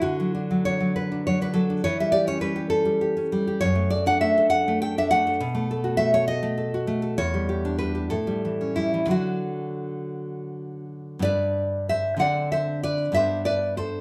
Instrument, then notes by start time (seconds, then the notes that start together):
nylon-string guitar
0.02 D3 F#4
0.20 F#3
0.35 D4
0.51 F#3
0.65 D4 C#5
0.80 F#3
0.96 B4
1.12 D4
1.27 F#3 C#5
1.41 D4 B4
1.54 F#3 A4
1.70 D4
1.84 E3 C#5
2.00 G3 E5
2.12 G4 D5
2.27 C#4 C#5
2.41 G3 B4
2.56 G4
2.70 A4
2.85 G3
3.01 G4
3.17 C#4
3.32 G3
3.47 G4
3.61 F#2 C#5
3.75 A3
3.90 A4 D5
4.06 D4 F#5
4.21 A3 E5
4.38 A4
4.50 F#5
4.68 A3
4.82 A4 G5
4.98 D4 E5
5.11 A3 F#5
5.27 A4
5.40 B2
5.55 A3
5.71 A4
5.84 F#4
5.97 A3 E5
6.14 A4 C#5
6.28 D#5
6.43 A3
6.58 A4
6.74 F#4
6.87 A3
7.02 A4
7.18 E2 C#5
7.34 G3
7.49 G4
7.65 D4
7.79 G3 B4
7.95 G4
8.10 A2 A4
8.27 G3
8.45 E3
8.61 C#4
8.76 G3 E4
8.94 E3
9.06 D3 F#3 D4
9.11 F#4
11.19 G2 B3 D4 D5
11.24 B4
11.89 C5 E5
12.17 D3 C4 D4 F#5
12.21 D5
12.52 C5 E5
12.83 B4 D5
13.12 G2 B3 D4 E5
13.16 C5
13.45 B4 D5
13.77 A4 C5